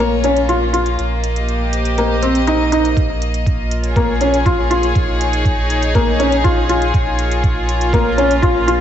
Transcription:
0.00 0.96 A#1 medium
0.00 0.13 A#3 medium
0.00 5.75 A#3 medium
0.00 1.78 F4 medium
0.00 0.99 G#4 medium
0.00 0.98 C#5 medium
0.24 0.38 C#4 medium
0.24 closed hi-hat medium
0.37 closed hi-hat soft
0.49 0.63 F4 medium
0.49 closed hi-hat soft
0.73 0.88 F4 medium
0.73 closed hi-hat medium
0.86 closed hi-hat soft
0.99 2.95 A#1 medium
0.99 closed hi-hat soft
1.23 3.75 D#5 medium
1.23 closed hi-hat medium
1.36 2.98 G4 medium
1.36 closed hi-hat soft
1.49 closed hi-hat soft
1.73 closed hi-hat medium
1.78 2.97 C5 medium
1.85 closed hi-hat soft
1.98 2.12 A#3 medium
1.98 closed hi-hat soft
2.22 2.37 C4 medium
2.22 closed hi-hat medium
2.35 closed hi-hat soft
2.47 2.62 D#4 medium
2.47 closed hi-hat soft
2.72 2.86 D#4 medium
2.72 closed hi-hat medium
2.85 closed hi-hat soft
2.97 4.93 A#1 medium
2.97 kick loud
2.97 closed hi-hat soft
3.22 closed hi-hat medium
3.34 closed hi-hat soft
3.46 5.75 F4 medium
3.46 kick medium
3.46 closed hi-hat soft
3.71 closed hi-hat medium
3.84 8.81 G#4 medium
3.84 8.81 C#5 medium
3.84 closed hi-hat soft
3.96 4.10 A#3 medium
3.96 kick loud
3.96 closed hi-hat soft
4.21 4.35 C#4 medium
4.21 closed hi-hat medium
4.34 closed hi-hat soft
4.46 4.60 F4 medium
4.46 kick loud
4.46 closed hi-hat soft
4.71 4.85 F4 medium
4.71 closed hi-hat medium
4.83 closed hi-hat soft
4.95 6.91 A#1 medium
4.95 7.73 D#4 medium
4.95 kick loud
4.95 closed hi-hat soft
5.21 closed hi-hat medium
5.33 closed hi-hat soft
5.45 kick medium
5.45 closed hi-hat soft
5.70 closed hi-hat medium
5.83 closed hi-hat soft
5.95 6.09 A#3 medium
5.95 kick loud
5.95 closed hi-hat soft
6.20 6.34 C#4 medium
6.20 closed hi-hat medium
6.32 closed hi-hat soft
6.44 6.58 F4 medium
6.44 kick loud
6.44 closed hi-hat soft
6.69 6.83 F4 medium
6.69 closed hi-hat medium
6.82 closed hi-hat soft
6.94 8.81 A#1 medium
6.94 8.81 A#3 medium
6.94 kick loud
6.94 closed hi-hat soft
7.01 8.81 F4 medium
7.19 closed hi-hat medium
7.32 closed hi-hat soft
7.43 kick medium
7.43 closed hi-hat soft
7.69 closed hi-hat medium
7.81 closed hi-hat soft
7.93 8.07 A#3 medium
7.93 kick medium
7.93 closed hi-hat soft
8.18 8.32 C#4 medium
8.18 closed hi-hat medium
8.31 closed hi-hat soft
8.42 8.57 F4 medium
8.42 kick loud
8.42 closed hi-hat soft
8.68 8.81 F4 medium
8.68 closed hi-hat medium

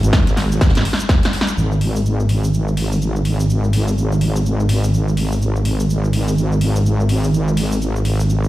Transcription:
0.03 0.25 G#1 loud
0.03 closed hi-hat soft
0.03 shaker medium
0.13 kick loud
0.13 snare loud
0.13 closed hi-hat medium
0.13 tambourine medium
0.13 shaker medium
0.27 0.73 G#1 loud
0.27 snare soft
0.27 closed hi-hat medium
0.27 shaker soft
0.37 snare medium
0.37 open hi-hat medium
0.37 tambourine medium
0.52 shaker medium
0.61 kick loud
0.61 snare medium
0.61 closed hi-hat medium
0.61 tambourine medium
0.61 shaker medium
0.68 snare medium
0.68 tambourine medium
0.75 0.84 G#1 loud
0.75 snare medium
0.75 closed hi-hat medium
0.75 tambourine medium
0.75 shaker soft
0.77 snare medium
0.77 tambourine medium
0.80 snare medium
0.85 open hi-hat loud
0.85 tambourine medium
0.93 snare medium
0.99 closed hi-hat soft
0.99 shaker medium
1.09 kick loud
1.09 snare medium
1.09 snare loud
1.09 closed hi-hat medium
1.09 tambourine medium
1.09 shaker medium
1.23 snare loud
1.23 closed hi-hat medium
1.23 tambourine medium
1.23 shaker soft
1.25 snare loud
1.33 snare loud
1.33 open hi-hat medium
1.33 tambourine medium
1.41 snare loud
1.47 closed hi-hat soft
1.47 shaker medium
1.57 8.48 G#1 medium
1.57 shaker medium
1.72 shaker soft
1.81 open hi-hat loud
1.96 shaker medium
2.06 shaker medium
2.20 shaker soft
2.29 open hi-hat medium
2.44 shaker medium
2.54 shaker medium
2.68 shaker soft
2.77 open hi-hat loud
2.92 shaker medium
3.02 shaker medium
3.16 shaker soft
3.25 open hi-hat medium
3.40 shaker medium
3.50 shaker medium
3.64 shaker soft
3.73 open hi-hat loud
3.88 shaker medium
3.98 shaker soft
4.12 shaker soft
4.21 open hi-hat medium
4.36 shaker medium
4.46 shaker medium
4.60 shaker soft
4.69 open hi-hat loud
4.84 shaker medium
4.94 shaker medium
5.08 shaker soft
5.17 open hi-hat medium
5.32 shaker medium
5.42 shaker medium
5.56 shaker soft
5.65 open hi-hat loud
5.80 shaker medium
5.90 shaker medium
6.04 shaker soft
6.13 open hi-hat medium
6.28 shaker medium
6.38 shaker medium
6.52 shaker soft
6.61 open hi-hat loud
6.76 shaker medium
6.86 shaker medium
7.00 shaker soft
7.09 open hi-hat medium
7.24 shaker medium
7.34 shaker medium
7.48 shaker soft
7.57 open hi-hat loud
7.72 shaker medium
7.82 shaker medium
7.96 shaker soft
8.05 open hi-hat medium
8.20 shaker medium
8.30 shaker medium
8.44 shaker soft

